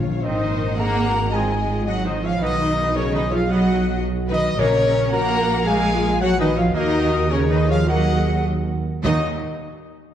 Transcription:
Already playing: F4 C#5 F5
0.07 A#2
0.15 A#2
0.22 G#1 D#3 C4 D#4 C5 D#5
0.52 A#4
0.76 A#3 G#4 A#4 F#5 A#5
1.06 F#4
1.32 D#3 G#3 C4 F4 G#4 D#5 G#5
1.86 F#3 D#4 F#4 D#5 F#5
2.05 D#3 D#4 C5 D#5
2.22 F3 F4 C#5 F5
2.40 B1 D#3 F#3 B3 D#4 B4 D#5
2.95 C#3 C#4 G#4 A#4 C#5
3.13 D#3 D#4 B4 D#5
3.31 F3 F4 C#5 F5
3.48 F#3 B3 F#4 D#5 F#5
4.30 D#3 D#4 B4 D#5
4.56 A#1 A#2 C#3 F#3 A#3 C#4 A#4 C#5
5.10 A#3 F#4 A#4 F#5 A#5
5.65 F#3 G#3 A#3 G#4 A#4 F5 G#5
5.93 F4
6.20 F#3 F#4 C#5 F#5
6.38 D#3 D#4 B4 D#5
6.55 F3 F4 C#5 F5
6.74 D#2 D#3 F#3 A#3 D#4 F#4 A#4 D#5
7.29 C#3 C#4 G#4 A#4 C#5
7.49 D#3 D#4 B4 D#5
7.67 F3 F4 C#5 F5
7.72 F5
7.87 F#3 A#3 F#4 A#4 D#5 F#5
8.16 G#4
8.46 F#4
9.03 D#2 A#2 D#3 F#3 A#3 D#4 D#5

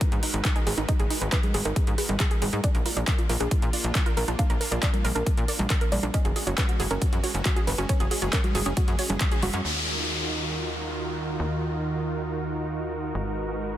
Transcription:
Already playing: G#3 D#4 F#4 A#4 B4
0.01 D#4, kick, closed hi-hat
0.12 G#2 D#4, closed hi-hat
0.23 D#4 B4, open hi-hat
0.34 G#1 D#4, closed hi-hat
0.45 D#4, kick, clap, closed hi-hat
0.56 D#4 G#4, closed hi-hat
0.67 G#1 G#4, open hi-hat
0.78 G#1 D#4, closed hi-hat
0.89 D#4 D#5, kick, closed hi-hat
0.99 G#1 G#4, closed hi-hat
1.10 D#4 G#4, open hi-hat
1.21 G#1 G#4 B4, closed hi-hat
1.32 D#4 B4, kick, clap, closed hi-hat
1.43 G#4, closed hi-hat, high conga
1.54 G#1 G#4, open hi-hat
1.65 G#1 D#4 A#4, closed hi-hat
1.76 G#4, kick, closed hi-hat
1.87 G#2 G#4, closed hi-hat
1.98 G#4 B4, open hi-hat
2.09 G#1 D#4, closed hi-hat, high conga
2.20 G#4, kick, clap, closed hi-hat
2.31 G#4, closed hi-hat
2.42 G#1 G#4, open hi-hat, high conga
2.53 G#2 D#4 G#4, closed hi-hat
2.64 A#3 D4 F4 D5, kick, closed hi-hat
2.75 A#1 F4 A#4, closed hi-hat
2.86 F4 A#4, open hi-hat
2.97 A#1 F4 D5, closed hi-hat
3.07 D4 A#4, kick, clap, closed hi-hat
3.18 F4, closed hi-hat
3.29 A#1 F4 A#4, open hi-hat
3.40 A#1 D4 G#4, closed hi-hat
3.51 F4, kick, closed hi-hat
3.62 A#2 F4, closed hi-hat
3.73 F4 D5, open hi-hat
3.84 A#1 D4, closed hi-hat
3.95 F4, kick, clap, closed hi-hat
4.06 F4 A#4, closed hi-hat
4.17 A#1 A#4, open hi-hat
4.28 A#1 D4 F4, closed hi-hat
4.39 D4 F5, kick, closed hi-hat
4.50 A#1 A#4, closed hi-hat
4.61 A#4, open hi-hat
4.71 A#1 A#4 D5, closed hi-hat
4.83 D4 D5, kick, clap, closed hi-hat
4.93 A#4, closed hi-hat, high conga
5.04 A#1 A#4, open hi-hat
5.15 A#1 D4 A#4, closed hi-hat
5.26 A#4, kick, closed hi-hat
5.37 A#2 A#4, closed hi-hat
5.48 A#4 D5, open hi-hat
5.59 A#1 D4, closed hi-hat, high conga
5.70 A#4, kick, clap, closed hi-hat
5.81 A#4, closed hi-hat
5.92 A#1 D5, open hi-hat, high conga
6.03 A#1 D4 A#4, closed hi-hat
6.14 G#3 C#4 F#4 D#5, kick, closed hi-hat
6.25 F#1 F#4 G#4, closed hi-hat
6.36 F#4 G#4, open hi-hat
6.47 F#1 F#4 C#5, closed hi-hat
6.58 C#4 B4, kick, clap, closed hi-hat
6.69 F#4, closed hi-hat
6.80 F#1 F#4 G#4, open hi-hat
6.91 F#1 C#4 A#4, closed hi-hat
7.02 F#4, kick, closed hi-hat
7.13 F#2 F#4, closed hi-hat
7.23 F#4 C#5, open hi-hat
7.34 F#1 C#4, closed hi-hat
7.45 F#4, kick, clap, closed hi-hat
7.56 F#4 G#4, closed hi-hat
7.67 F#1 B4, open hi-hat
7.78 F#1 C#4 F#4, closed hi-hat
7.89 C#4 G#4 C#5, kick, closed hi-hat
8.00 F#1 F#4 G#4, closed hi-hat
8.11 F#4 G#4, open hi-hat
8.22 F#1 F#4 C#5, closed hi-hat
8.33 C#4 A#4, kick, clap, closed hi-hat
8.44 F#4, closed hi-hat, high conga
8.55 F#1 F#4 G#4, open hi-hat
8.66 F#1 C#4 G#4, closed hi-hat
8.77 F#4, kick, closed hi-hat
8.88 F#2 F#4, closed hi-hat
8.99 F#4 C#5, open hi-hat
9.10 F#1 C#4, closed hi-hat, high conga
9.21 F#4, kick, clap, closed hi-hat
9.32 F#4 G#4, closed hi-hat
9.42 F#1 F#4, open hi-hat, high conga
9.53 F#2 C#4 F#4, closed hi-hat
9.64 D#2 D#3 D#4 F4 F#4 A#4, downlifter
11.40 D#2
13.15 G#1 G#3 B4

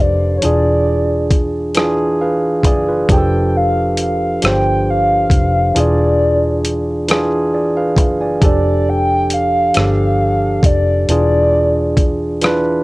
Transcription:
Already playing: F1 F3 D4 G4 B4 C5
0.01 D5
0.38 E3 C#5
0.42 E1 D4 F4 G#4 D5, closed hi-hat
1.31 kick, closed hi-hat
1.75 E3 D4 F4 G#4, cross-stick, closed hi-hat
2.21 B4 F5
2.63 F#1 G#4 D5, kick, closed hi-hat
2.88 F4 B4
3.09 F1 F3 D4 G4 G#4 G5, kick, closed hi-hat
3.18 A4
3.49 G5
3.57 F5
3.97 closed hi-hat
4.02 F5
4.42 G1 F3 D4 G4 C5, cross-stick, closed hi-hat
4.46 G5
4.90 F5
5.30 F1, kick, closed hi-hat
5.74 E1 E3 D4 F4 G#4, closed hi-hat
5.80 D5
6.65 closed hi-hat
7.08 E3 D4 F4 G#4, cross-stick, closed hi-hat
7.54 G#4 D5
7.77 B4 F5
7.97 F#1, kick, closed hi-hat
8.21 D5 G#5
8.41 F1 F3 D4 G4 A4, kick, closed hi-hat
8.45 D5
8.89 G5
9.30 F5, closed hi-hat
9.74 G1 F3 D4 G4 A4, cross-stick, closed hi-hat
10.63 F1 D5, kick, closed hi-hat
11.09 E1 E3 D4 F4 G#4 D5, closed hi-hat
11.97 kick, closed hi-hat
12.41 E3 D4 F4 B4, cross-stick, closed hi-hat

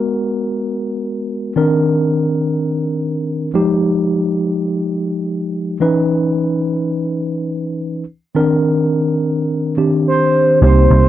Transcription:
Already playing: G#3 B3 F#4 A#4
1.56 D#3 C4 D4 A#4
3.54 F3 G#3 D#4 G4
5.80 E3 C#4 D#4 B4
8.35 D#3 C4 D4 A#4
9.77 D#3 C4 D4 G4
10.08 C5
10.62 C2 A#3 C4 D#4 G4 C5
10.90 C2

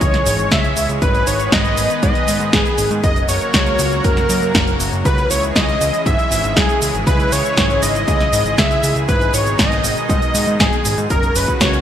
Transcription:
Already playing: E3 G#3 C#4 G#4 C#5
0.01 C#2 C#5, kick, closed hi-hat, cabasa
0.14 snare, closed hi-hat, cabasa
0.26 G#1, open hi-hat, cabasa
0.39 G#1, closed hi-hat, cabasa
0.51 C#2 E5, kick, snare, closed hi-hat, cabasa
0.64 closed hi-hat, cabasa
0.77 C#2, open hi-hat, cabasa
0.89 C#2, closed hi-hat, cabasa
1.02 G#1 D#3 B3 G#4 B4, kick, closed hi-hat, cabasa
1.15 closed hi-hat, cabasa
1.27 G#1 C#5, open hi-hat, cabasa
1.40 closed hi-hat, cabasa
1.52 G#1 D#5, kick, snare, closed hi-hat, cabasa
1.65 closed hi-hat, cabasa
1.77 G#1, open hi-hat, cabasa
1.90 closed hi-hat, cabasa
2.03 G#2 D#5, kick, closed hi-hat, cabasa
2.15 closed hi-hat, cabasa
2.28 G#2, open hi-hat, cabasa
2.40 G#2, closed hi-hat, cabasa
2.53 G#1 G#4, kick, snare, closed hi-hat, cabasa
2.66 closed hi-hat, cabasa
2.78 G#1, open hi-hat, cabasa
2.91 G#2, closed hi-hat, cabasa
3.03 F#1 C#3 F#3 A#3 F#4 A#4 D#5, kick, closed hi-hat, cabasa
3.16 closed hi-hat, cabasa
3.29 F#1 C#5, open hi-hat, cabasa
3.41 closed hi-hat, cabasa
3.54 C#2 C#5, kick, snare, closed hi-hat, cabasa
3.66 closed hi-hat, cabasa
3.79 C#2, open hi-hat, cabasa
3.92 closed hi-hat, cabasa
4.04 F#1 A#4, kick, closed hi-hat, cabasa
4.17 snare, closed hi-hat, cabasa
4.29 F#2, open hi-hat, cabasa
4.42 F#2, closed hi-hat, cabasa
4.55 F#1, kick, snare, closed hi-hat, cabasa
4.67 closed hi-hat, cabasa
4.80 F#1, open hi-hat, cabasa
4.92 F#1, closed hi-hat, cabasa
5.05 C#2 E3 G#3 E4 G#4 B4, kick, closed hi-hat, cabasa
5.18 closed hi-hat, cabasa
5.30 C#2 C#5, open hi-hat, cabasa
5.43 closed hi-hat, cabasa
5.56 C#2 D#5, kick, snare, closed hi-hat, cabasa
5.69 closed hi-hat, cabasa
5.81 C#2, open hi-hat, cabasa
5.94 closed hi-hat, cabasa
6.06 G#1 E5, kick, closed hi-hat, cabasa
6.19 closed hi-hat, cabasa
6.31 G#1, open hi-hat, cabasa
6.44 G#1, closed hi-hat, cabasa
6.56 C#2 G#4, kick, snare, closed hi-hat, cabasa
6.69 closed hi-hat, cabasa
6.82 C#2, open hi-hat, cabasa
6.94 G#1, closed hi-hat, cabasa
7.07 C#2 B4, kick, closed hi-hat, cabasa
7.20 closed hi-hat, cabasa
7.32 C#2 C#5, open hi-hat, cabasa
7.45 closed hi-hat, cabasa
7.57 G#1, kick, snare, closed hi-hat, cabasa
7.70 closed hi-hat, cabasa
7.83 G#1 D#5, open hi-hat, cabasa
7.95 closed hi-hat, cabasa
8.08 C#2, kick, closed hi-hat, cabasa
8.20 snare, closed hi-hat, cabasa
8.33 G#1, open hi-hat, cabasa
8.45 G#1, closed hi-hat, cabasa
8.58 C#2 E5, kick, snare, closed hi-hat, cabasa
8.71 closed hi-hat, cabasa
8.83 C#2, open hi-hat, cabasa
8.96 C#2, closed hi-hat, cabasa
9.08 G#1 B2 D#3 D#4 B4, kick, closed hi-hat, cabasa
9.21 closed hi-hat, cabasa
9.34 G#1 C#5, open hi-hat, cabasa
9.46 closed hi-hat, cabasa
9.59 G#1 D#5, kick, snare, closed hi-hat, cabasa
9.72 closed hi-hat, cabasa
9.84 G#1, open hi-hat, cabasa
9.97 closed hi-hat, cabasa
10.09 G#2 D#5, kick, closed hi-hat, cabasa
10.22 closed hi-hat, cabasa
10.34 G#2, open hi-hat, cabasa
10.47 G#2, closed hi-hat, cabasa
10.60 G#1 G#4, kick, snare, closed hi-hat, cabasa
10.73 closed hi-hat, cabasa
10.85 G#1, open hi-hat, cabasa
10.98 G#2, closed hi-hat, cabasa
11.10 F#1 A#2 C#3 F#3 C#4 F#4 A#4, kick, closed hi-hat, cabasa
11.23 closed hi-hat, cabasa
11.35 F#1 B4, open hi-hat, cabasa
11.48 kick, cabasa
11.61 C#2 C#5, kick, snare, closed hi-hat, cabasa
11.74 closed hi-hat, cabasa

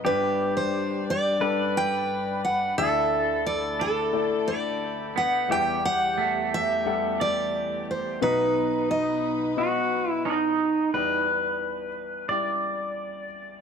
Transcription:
Already playing: B3
0.05 G1 G2 G3 D4 G4 B4 D5
0.57 C5
1.10 D5
1.40 G3 D4 A4 B4
1.77 G5
2.45 F#5
2.78 D2 D3 A3 E4 A4 D5 E5
3.46 D5
3.80 D4 A4
4.13 A3 E4 D5
4.48 D5
4.56 G4
5.16 B3 F#5
5.49 E2 E3 G3 G4 E5 G5
5.85 F#5
6.18 A3
6.54 E5
6.86 G3 A4 F#5
7.20 D5
7.91 C5
8.21 B1 B2 F#3 B3 D#4 F#4 B4 D#5
8.91 D#5
9.57 B3 F#4 D#5
10.11 E4
10.25 D#4
10.94 E2 E3 G3 E4 B4 D5
12.29 G3 E4 D5

